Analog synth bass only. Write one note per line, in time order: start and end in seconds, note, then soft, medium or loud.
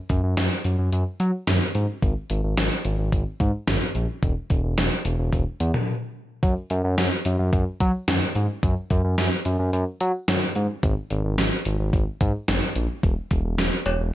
0.10 0.21 F#2 loud
0.24 0.35 F#2 medium
0.37 0.49 F#2 loud
0.65 0.76 F#2 loud
0.79 0.90 F#2 loud
0.92 1.04 F#2 loud
1.20 1.31 F#3 loud
1.47 1.59 F#2 medium
1.75 1.86 G#2 medium
2.02 2.14 G#1 loud
2.30 2.41 G#1 loud
2.44 2.55 G#1 medium
2.58 2.69 G#1 loud
2.85 2.96 G#1 loud
2.99 3.10 G#1 loud
3.12 3.24 G#1 loud
3.40 3.51 G#2 medium
3.68 3.79 G#1 medium
3.95 4.07 A#1 medium
4.23 4.34 E1 loud
4.50 4.62 E1 loud
4.64 4.75 E1 medium
4.78 4.89 E1 loud
5.05 5.17 E1 loud
5.19 5.30 E1 loud
5.33 5.44 E1 loud
5.60 5.72 E2 loud
6.43 6.54 F#2 loud
6.70 6.82 F#2 loud
6.84 6.96 F#2 loud
6.98 7.09 F#2 loud
7.25 7.37 F#2 loud
7.39 7.51 F#2 loud
7.53 7.64 F#2 loud
7.80 7.92 F#3 loud
8.08 8.19 F#2 medium
8.35 8.47 G#2 loud
8.63 8.74 F#2 loud
8.91 9.02 F#2 loud
9.04 9.16 F#2 medium
9.18 9.29 F#2 loud
9.46 9.57 F#2 loud
9.59 9.71 F#2 loud
9.73 9.84 F#2 loud
10.01 10.12 F#3 loud
10.28 10.40 F#2 medium
10.56 10.67 G#2 medium
10.83 10.95 G#1 loud
11.11 11.22 G#1 loud
11.24 11.36 G#1 loud
11.38 11.50 G#1 loud
11.66 11.77 G#1 loud
11.79 11.91 G#1 loud
11.93 12.05 G#1 loud
12.21 12.32 G#2 loud
12.48 12.60 G#1 loud
12.76 12.87 A#1 medium
13.03 13.15 E1 loud
13.31 13.42 E1 loud
13.45 13.56 E1 medium
13.58 13.70 E1 loud
13.86 13.97 E1 loud
14.00 14.11 E1 loud